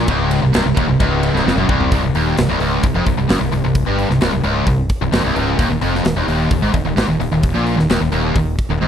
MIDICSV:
0, 0, Header, 1, 4, 480
1, 0, Start_track
1, 0, Key_signature, -3, "minor"
1, 0, Tempo, 459418
1, 87, Time_signature, 4, 2, 24, 8
1, 9275, End_track
2, 0, Start_track
2, 0, Title_t, "Distorted electric guitar"
2, 0, Program_c, 0, 30
2, 87, Note_on_c, 0, 37, 102
2, 439, Note_off_c, 0, 37, 0
2, 447, Note_on_c, 0, 36, 69
2, 561, Note_off_c, 0, 36, 0
2, 573, Note_on_c, 0, 36, 100
2, 676, Note_off_c, 0, 36, 0
2, 689, Note_on_c, 0, 36, 63
2, 799, Note_off_c, 0, 36, 0
2, 803, Note_on_c, 0, 39, 114
2, 917, Note_off_c, 0, 39, 0
2, 927, Note_on_c, 0, 36, 67
2, 1042, Note_off_c, 0, 36, 0
2, 1046, Note_on_c, 0, 37, 92
2, 1398, Note_off_c, 0, 37, 0
2, 1408, Note_on_c, 0, 36, 95
2, 1515, Note_off_c, 0, 36, 0
2, 1519, Note_on_c, 0, 41, 104
2, 1631, Note_off_c, 0, 41, 0
2, 1635, Note_on_c, 0, 42, 99
2, 1752, Note_off_c, 0, 42, 0
2, 1770, Note_on_c, 0, 36, 93
2, 1989, Note_off_c, 0, 36, 0
2, 2001, Note_on_c, 0, 36, 87
2, 2116, Note_off_c, 0, 36, 0
2, 2132, Note_on_c, 0, 36, 72
2, 2245, Note_off_c, 0, 36, 0
2, 2249, Note_on_c, 0, 39, 100
2, 2479, Note_off_c, 0, 39, 0
2, 2486, Note_on_c, 0, 36, 75
2, 2593, Note_off_c, 0, 36, 0
2, 2605, Note_on_c, 0, 36, 87
2, 2717, Note_off_c, 0, 36, 0
2, 2726, Note_on_c, 0, 37, 107
2, 2958, Note_off_c, 0, 37, 0
2, 2970, Note_on_c, 0, 36, 59
2, 3083, Note_off_c, 0, 36, 0
2, 3087, Note_on_c, 0, 41, 107
2, 3197, Note_off_c, 0, 41, 0
2, 3201, Note_on_c, 0, 36, 62
2, 3306, Note_off_c, 0, 36, 0
2, 3319, Note_on_c, 0, 36, 63
2, 3433, Note_off_c, 0, 36, 0
2, 3437, Note_on_c, 0, 42, 95
2, 3551, Note_off_c, 0, 42, 0
2, 3556, Note_on_c, 0, 36, 73
2, 3663, Note_off_c, 0, 36, 0
2, 3676, Note_on_c, 0, 36, 66
2, 3794, Note_off_c, 0, 36, 0
2, 3807, Note_on_c, 0, 36, 65
2, 3997, Note_off_c, 0, 36, 0
2, 4036, Note_on_c, 0, 43, 95
2, 4273, Note_off_c, 0, 43, 0
2, 4282, Note_on_c, 0, 36, 62
2, 4388, Note_off_c, 0, 36, 0
2, 4400, Note_on_c, 0, 36, 99
2, 4510, Note_off_c, 0, 36, 0
2, 4522, Note_on_c, 0, 36, 72
2, 4632, Note_off_c, 0, 36, 0
2, 4636, Note_on_c, 0, 37, 105
2, 4873, Note_off_c, 0, 37, 0
2, 4882, Note_on_c, 0, 36, 60
2, 5075, Note_off_c, 0, 36, 0
2, 5243, Note_on_c, 0, 36, 76
2, 5350, Note_off_c, 0, 36, 0
2, 5354, Note_on_c, 0, 41, 93
2, 5472, Note_off_c, 0, 41, 0
2, 5477, Note_on_c, 0, 36, 108
2, 5594, Note_off_c, 0, 36, 0
2, 5598, Note_on_c, 0, 37, 99
2, 5829, Note_off_c, 0, 37, 0
2, 5833, Note_on_c, 0, 39, 104
2, 5944, Note_off_c, 0, 39, 0
2, 5956, Note_on_c, 0, 39, 70
2, 6068, Note_off_c, 0, 39, 0
2, 6072, Note_on_c, 0, 41, 100
2, 6312, Note_off_c, 0, 41, 0
2, 6319, Note_on_c, 0, 39, 70
2, 6426, Note_off_c, 0, 39, 0
2, 6439, Note_on_c, 0, 39, 92
2, 6548, Note_off_c, 0, 39, 0
2, 6561, Note_on_c, 0, 39, 108
2, 6796, Note_off_c, 0, 39, 0
2, 6810, Note_on_c, 0, 39, 66
2, 6918, Note_off_c, 0, 39, 0
2, 6922, Note_on_c, 0, 44, 100
2, 7031, Note_off_c, 0, 44, 0
2, 7035, Note_on_c, 0, 39, 57
2, 7152, Note_off_c, 0, 39, 0
2, 7165, Note_on_c, 0, 39, 71
2, 7282, Note_off_c, 0, 39, 0
2, 7287, Note_on_c, 0, 44, 96
2, 7396, Note_off_c, 0, 44, 0
2, 7400, Note_on_c, 0, 39, 74
2, 7509, Note_off_c, 0, 39, 0
2, 7521, Note_on_c, 0, 39, 65
2, 7639, Note_off_c, 0, 39, 0
2, 7652, Note_on_c, 0, 39, 65
2, 7842, Note_off_c, 0, 39, 0
2, 7892, Note_on_c, 0, 46, 91
2, 8123, Note_off_c, 0, 46, 0
2, 8131, Note_on_c, 0, 39, 72
2, 8238, Note_off_c, 0, 39, 0
2, 8251, Note_on_c, 0, 39, 96
2, 8362, Note_off_c, 0, 39, 0
2, 8376, Note_on_c, 0, 39, 68
2, 8473, Note_off_c, 0, 39, 0
2, 8485, Note_on_c, 0, 39, 99
2, 8720, Note_off_c, 0, 39, 0
2, 8738, Note_on_c, 0, 39, 56
2, 8926, Note_off_c, 0, 39, 0
2, 9103, Note_on_c, 0, 39, 68
2, 9212, Note_off_c, 0, 39, 0
2, 9217, Note_on_c, 0, 44, 100
2, 9275, Note_off_c, 0, 44, 0
2, 9275, End_track
3, 0, Start_track
3, 0, Title_t, "Fingered electric bass"
3, 0, Program_c, 1, 33
3, 83, Note_on_c, 1, 25, 102
3, 419, Note_off_c, 1, 25, 0
3, 452, Note_on_c, 1, 24, 70
3, 561, Note_off_c, 1, 24, 0
3, 574, Note_on_c, 1, 24, 91
3, 681, Note_off_c, 1, 24, 0
3, 691, Note_on_c, 1, 24, 89
3, 800, Note_off_c, 1, 24, 0
3, 806, Note_on_c, 1, 27, 101
3, 917, Note_off_c, 1, 27, 0
3, 936, Note_on_c, 1, 24, 73
3, 1043, Note_off_c, 1, 24, 0
3, 1049, Note_on_c, 1, 25, 97
3, 1381, Note_off_c, 1, 25, 0
3, 1409, Note_on_c, 1, 24, 96
3, 1519, Note_off_c, 1, 24, 0
3, 1527, Note_on_c, 1, 29, 86
3, 1624, Note_off_c, 1, 29, 0
3, 1630, Note_on_c, 1, 30, 93
3, 1748, Note_off_c, 1, 30, 0
3, 1769, Note_on_c, 1, 24, 97
3, 1990, Note_off_c, 1, 24, 0
3, 2004, Note_on_c, 1, 24, 80
3, 2115, Note_off_c, 1, 24, 0
3, 2124, Note_on_c, 1, 24, 80
3, 2235, Note_off_c, 1, 24, 0
3, 2243, Note_on_c, 1, 27, 74
3, 2467, Note_off_c, 1, 27, 0
3, 2491, Note_on_c, 1, 24, 76
3, 2599, Note_off_c, 1, 24, 0
3, 2609, Note_on_c, 1, 24, 93
3, 2718, Note_off_c, 1, 24, 0
3, 2726, Note_on_c, 1, 25, 88
3, 2948, Note_off_c, 1, 25, 0
3, 2963, Note_on_c, 1, 24, 68
3, 3075, Note_off_c, 1, 24, 0
3, 3084, Note_on_c, 1, 29, 99
3, 3196, Note_off_c, 1, 29, 0
3, 3204, Note_on_c, 1, 24, 84
3, 3316, Note_off_c, 1, 24, 0
3, 3325, Note_on_c, 1, 24, 80
3, 3436, Note_off_c, 1, 24, 0
3, 3449, Note_on_c, 1, 30, 95
3, 3558, Note_off_c, 1, 30, 0
3, 3564, Note_on_c, 1, 24, 74
3, 3676, Note_off_c, 1, 24, 0
3, 3691, Note_on_c, 1, 24, 69
3, 3799, Note_off_c, 1, 24, 0
3, 3816, Note_on_c, 1, 24, 74
3, 4034, Note_off_c, 1, 24, 0
3, 4053, Note_on_c, 1, 31, 80
3, 4272, Note_off_c, 1, 31, 0
3, 4283, Note_on_c, 1, 24, 74
3, 4395, Note_off_c, 1, 24, 0
3, 4413, Note_on_c, 1, 24, 94
3, 4520, Note_off_c, 1, 24, 0
3, 4535, Note_on_c, 1, 24, 75
3, 4637, Note_off_c, 1, 24, 0
3, 4643, Note_on_c, 1, 25, 93
3, 4867, Note_off_c, 1, 25, 0
3, 4879, Note_on_c, 1, 24, 72
3, 5105, Note_off_c, 1, 24, 0
3, 5244, Note_on_c, 1, 24, 79
3, 5356, Note_off_c, 1, 24, 0
3, 5364, Note_on_c, 1, 29, 90
3, 5476, Note_off_c, 1, 29, 0
3, 5485, Note_on_c, 1, 24, 85
3, 5597, Note_off_c, 1, 24, 0
3, 5603, Note_on_c, 1, 25, 99
3, 5827, Note_off_c, 1, 25, 0
3, 5839, Note_on_c, 1, 27, 98
3, 5951, Note_off_c, 1, 27, 0
3, 5957, Note_on_c, 1, 27, 70
3, 6072, Note_off_c, 1, 27, 0
3, 6088, Note_on_c, 1, 29, 75
3, 6310, Note_off_c, 1, 29, 0
3, 6325, Note_on_c, 1, 27, 75
3, 6437, Note_off_c, 1, 27, 0
3, 6445, Note_on_c, 1, 27, 106
3, 6551, Note_off_c, 1, 27, 0
3, 6557, Note_on_c, 1, 27, 100
3, 6785, Note_off_c, 1, 27, 0
3, 6801, Note_on_c, 1, 27, 70
3, 6915, Note_off_c, 1, 27, 0
3, 6925, Note_on_c, 1, 32, 97
3, 7034, Note_off_c, 1, 32, 0
3, 7040, Note_on_c, 1, 27, 81
3, 7155, Note_off_c, 1, 27, 0
3, 7168, Note_on_c, 1, 27, 78
3, 7274, Note_off_c, 1, 27, 0
3, 7280, Note_on_c, 1, 32, 87
3, 7395, Note_off_c, 1, 32, 0
3, 7402, Note_on_c, 1, 27, 74
3, 7516, Note_off_c, 1, 27, 0
3, 7524, Note_on_c, 1, 27, 81
3, 7637, Note_off_c, 1, 27, 0
3, 7644, Note_on_c, 1, 27, 82
3, 7869, Note_off_c, 1, 27, 0
3, 7880, Note_on_c, 1, 34, 88
3, 8107, Note_off_c, 1, 34, 0
3, 8131, Note_on_c, 1, 27, 70
3, 8241, Note_off_c, 1, 27, 0
3, 8253, Note_on_c, 1, 27, 91
3, 8362, Note_off_c, 1, 27, 0
3, 8371, Note_on_c, 1, 27, 80
3, 8481, Note_off_c, 1, 27, 0
3, 8491, Note_on_c, 1, 27, 86
3, 8713, Note_off_c, 1, 27, 0
3, 8731, Note_on_c, 1, 27, 67
3, 8953, Note_off_c, 1, 27, 0
3, 9088, Note_on_c, 1, 27, 78
3, 9200, Note_off_c, 1, 27, 0
3, 9210, Note_on_c, 1, 32, 81
3, 9275, Note_off_c, 1, 32, 0
3, 9275, End_track
4, 0, Start_track
4, 0, Title_t, "Drums"
4, 81, Note_on_c, 9, 51, 104
4, 86, Note_on_c, 9, 36, 100
4, 186, Note_off_c, 9, 51, 0
4, 190, Note_off_c, 9, 36, 0
4, 323, Note_on_c, 9, 51, 82
4, 428, Note_off_c, 9, 51, 0
4, 563, Note_on_c, 9, 51, 106
4, 575, Note_on_c, 9, 38, 123
4, 668, Note_off_c, 9, 51, 0
4, 679, Note_off_c, 9, 38, 0
4, 806, Note_on_c, 9, 36, 112
4, 809, Note_on_c, 9, 51, 72
4, 911, Note_off_c, 9, 36, 0
4, 913, Note_off_c, 9, 51, 0
4, 1047, Note_on_c, 9, 36, 102
4, 1047, Note_on_c, 9, 51, 94
4, 1151, Note_off_c, 9, 51, 0
4, 1152, Note_off_c, 9, 36, 0
4, 1285, Note_on_c, 9, 51, 75
4, 1390, Note_off_c, 9, 51, 0
4, 1421, Note_on_c, 9, 38, 29
4, 1526, Note_off_c, 9, 38, 0
4, 1542, Note_on_c, 9, 38, 59
4, 1647, Note_off_c, 9, 38, 0
4, 1648, Note_on_c, 9, 47, 76
4, 1752, Note_off_c, 9, 47, 0
4, 1767, Note_on_c, 9, 36, 98
4, 1871, Note_off_c, 9, 36, 0
4, 1887, Note_on_c, 9, 43, 78
4, 1991, Note_off_c, 9, 43, 0
4, 2002, Note_on_c, 9, 46, 64
4, 2006, Note_on_c, 9, 36, 94
4, 2106, Note_off_c, 9, 46, 0
4, 2110, Note_off_c, 9, 36, 0
4, 2244, Note_on_c, 9, 46, 62
4, 2349, Note_off_c, 9, 46, 0
4, 2482, Note_on_c, 9, 46, 85
4, 2493, Note_on_c, 9, 38, 114
4, 2586, Note_off_c, 9, 46, 0
4, 2598, Note_off_c, 9, 38, 0
4, 2719, Note_on_c, 9, 46, 58
4, 2824, Note_off_c, 9, 46, 0
4, 2958, Note_on_c, 9, 46, 78
4, 2963, Note_on_c, 9, 36, 112
4, 3062, Note_off_c, 9, 46, 0
4, 3067, Note_off_c, 9, 36, 0
4, 3200, Note_on_c, 9, 46, 65
4, 3203, Note_on_c, 9, 36, 85
4, 3305, Note_off_c, 9, 46, 0
4, 3308, Note_off_c, 9, 36, 0
4, 3441, Note_on_c, 9, 46, 85
4, 3452, Note_on_c, 9, 38, 110
4, 3545, Note_off_c, 9, 46, 0
4, 3556, Note_off_c, 9, 38, 0
4, 3682, Note_on_c, 9, 46, 56
4, 3786, Note_off_c, 9, 46, 0
4, 3917, Note_on_c, 9, 46, 65
4, 3920, Note_on_c, 9, 36, 103
4, 4021, Note_off_c, 9, 46, 0
4, 4025, Note_off_c, 9, 36, 0
4, 4165, Note_on_c, 9, 46, 55
4, 4269, Note_off_c, 9, 46, 0
4, 4289, Note_on_c, 9, 38, 31
4, 4393, Note_off_c, 9, 38, 0
4, 4397, Note_on_c, 9, 46, 85
4, 4409, Note_on_c, 9, 38, 114
4, 4502, Note_off_c, 9, 46, 0
4, 4513, Note_off_c, 9, 38, 0
4, 4634, Note_on_c, 9, 46, 52
4, 4739, Note_off_c, 9, 46, 0
4, 4875, Note_on_c, 9, 46, 65
4, 4877, Note_on_c, 9, 36, 106
4, 4980, Note_off_c, 9, 46, 0
4, 4981, Note_off_c, 9, 36, 0
4, 5114, Note_on_c, 9, 46, 58
4, 5118, Note_on_c, 9, 36, 86
4, 5218, Note_off_c, 9, 46, 0
4, 5222, Note_off_c, 9, 36, 0
4, 5355, Note_on_c, 9, 46, 71
4, 5367, Note_on_c, 9, 38, 114
4, 5459, Note_off_c, 9, 46, 0
4, 5471, Note_off_c, 9, 38, 0
4, 5601, Note_on_c, 9, 46, 49
4, 5705, Note_off_c, 9, 46, 0
4, 5840, Note_on_c, 9, 36, 99
4, 5843, Note_on_c, 9, 46, 68
4, 5945, Note_off_c, 9, 36, 0
4, 5947, Note_off_c, 9, 46, 0
4, 6074, Note_on_c, 9, 46, 62
4, 6179, Note_off_c, 9, 46, 0
4, 6217, Note_on_c, 9, 38, 28
4, 6319, Note_on_c, 9, 46, 87
4, 6322, Note_off_c, 9, 38, 0
4, 6331, Note_on_c, 9, 38, 120
4, 6424, Note_off_c, 9, 46, 0
4, 6435, Note_off_c, 9, 38, 0
4, 6564, Note_on_c, 9, 46, 62
4, 6668, Note_off_c, 9, 46, 0
4, 6800, Note_on_c, 9, 46, 76
4, 6802, Note_on_c, 9, 36, 106
4, 6904, Note_off_c, 9, 46, 0
4, 6906, Note_off_c, 9, 36, 0
4, 7038, Note_on_c, 9, 46, 61
4, 7042, Note_on_c, 9, 36, 82
4, 7143, Note_off_c, 9, 46, 0
4, 7147, Note_off_c, 9, 36, 0
4, 7284, Note_on_c, 9, 46, 76
4, 7295, Note_on_c, 9, 38, 105
4, 7388, Note_off_c, 9, 46, 0
4, 7400, Note_off_c, 9, 38, 0
4, 7533, Note_on_c, 9, 46, 61
4, 7637, Note_off_c, 9, 46, 0
4, 7762, Note_on_c, 9, 46, 65
4, 7768, Note_on_c, 9, 36, 95
4, 7867, Note_off_c, 9, 46, 0
4, 7872, Note_off_c, 9, 36, 0
4, 8010, Note_on_c, 9, 46, 52
4, 8114, Note_off_c, 9, 46, 0
4, 8141, Note_on_c, 9, 38, 32
4, 8246, Note_off_c, 9, 38, 0
4, 8251, Note_on_c, 9, 46, 78
4, 8262, Note_on_c, 9, 38, 112
4, 8355, Note_off_c, 9, 46, 0
4, 8367, Note_off_c, 9, 38, 0
4, 8486, Note_on_c, 9, 46, 56
4, 8590, Note_off_c, 9, 46, 0
4, 8731, Note_on_c, 9, 36, 102
4, 8733, Note_on_c, 9, 46, 74
4, 8835, Note_off_c, 9, 36, 0
4, 8837, Note_off_c, 9, 46, 0
4, 8971, Note_on_c, 9, 36, 82
4, 8973, Note_on_c, 9, 46, 52
4, 9076, Note_off_c, 9, 36, 0
4, 9077, Note_off_c, 9, 46, 0
4, 9219, Note_on_c, 9, 48, 61
4, 9275, Note_off_c, 9, 48, 0
4, 9275, End_track
0, 0, End_of_file